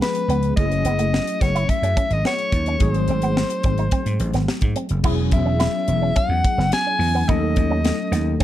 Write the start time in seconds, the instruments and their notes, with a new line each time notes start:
Already playing: tine electric piano F3 G#3 B3 C#4 G#4
0.02 soprano saxophone B4, snare
0.15 closed hi-hat
0.28 slap bass C#2, clean electric guitar B3, closed hi-hat
0.43 closed hi-hat
0.56 slap bass F#1, tine electric piano F#3 A3 C#4 E4 G#4, soprano saxophone D#5, kick, closed hi-hat
0.71 muted clean electric guitar stroke, closed hi-hat
0.84 slap bass F#1, clean electric guitar B3, closed hi-hat
0.99 clean electric guitar A3, closed hi-hat
1.14 muted clean electric guitar stroke, snare
1.27 closed hi-hat
1.41 slap bass F#1, clean electric guitar B3, soprano saxophone C#5, kick, snare, closed hi-hat
1.55 clean electric guitar E4, closed hi-hat
1.69 soprano saxophone E5, muted slap bass stroke, muted clean electric guitar stroke, kick, closed hi-hat
1.82 slap bass F#2, clean electric guitar C#4, closed hi-hat
1.97 clean electric guitar C#4, kick, closed hi-hat
2.10 slap bass G#1, soprano saxophone D#5, closed hi-hat
2.25 clean electric guitar B3, soprano saxophone C#5, snare
2.38 closed hi-hat
2.52 slap bass D#2, muted clean electric guitar stroke, kick, closed hi-hat
2.66 clean electric guitar C#4, closed hi-hat
2.78 slap bass G#1, tine electric piano F#3 A3 C4 D#4 G#4, kick, closed hi-hat
2.83 soprano saxophone C5
2.94 muted clean electric guitar stroke, closed hi-hat
3.08 slap bass G#1, clean electric guitar C4, closed hi-hat
3.22 clean electric guitar B3, closed hi-hat
3.37 muted clean electric guitar stroke, snare
3.50 closed hi-hat
3.63 slap bass G#1, clean electric guitar C4, kick, closed hi-hat
3.78 clean electric guitar D#4, closed hi-hat
3.91 clean electric guitar C4, kick, closed hi-hat
4.06 slap bass G#2, closed hi-hat
4.20 slap bass A1, muted clean electric guitar stroke, closed hi-hat
4.34 slap bass G#1, clean electric guitar B3, snare, closed hi-hat
4.48 snare
4.61 slap bass G#2, kick, closed hi-hat
4.76 clean electric guitar C4, closed hi-hat
4.89 slap bass F#1, closed hi-hat
5.03 slap bass E1, tine electric piano F#3 B3 C#4 E4 G#4, clean electric guitar E4, kick, crash
5.32 slap bass E1, soprano saxophone E5, muted clean electric guitar stroke, kick, closed hi-hat
5.46 clean electric guitar C#4
5.60 clean electric guitar E4, snare, closed hi-hat
5.88 slap bass E1, muted clean electric guitar stroke, closed hi-hat
6.02 clean electric guitar C#4
6.16 clean electric guitar C#4, soprano saxophone F#5, muted slap bass stroke, kick, closed hi-hat
6.29 slap bass E2
6.45 muted clean electric guitar stroke, kick, closed hi-hat
6.58 slap bass F#1, clean electric guitar B3, snare
6.72 soprano saxophone G#5, snare, closed hi-hat
6.87 clean electric guitar C#4
6.99 slap bass E2, muted clean electric guitar stroke, open hi-hat
7.15 clean electric guitar B3
7.28 slap bass D#2, tine electric piano F3 A3 C#4 D#4 A4, clean electric guitar D#4, soprano saxophone D#5, kick, closed hi-hat
7.34 tine electric piano F#3
7.56 slap bass D#2, muted clean electric guitar stroke, kick, closed hi-hat
7.71 clean electric guitar C#4
7.85 snare, closed hi-hat
8.12 slap bass D#2, clean electric guitar A3, snare, closed hi-hat
8.39 slap bass D2, tine electric piano F#3 A3 C4, clean electric guitar C4, kick, closed hi-hat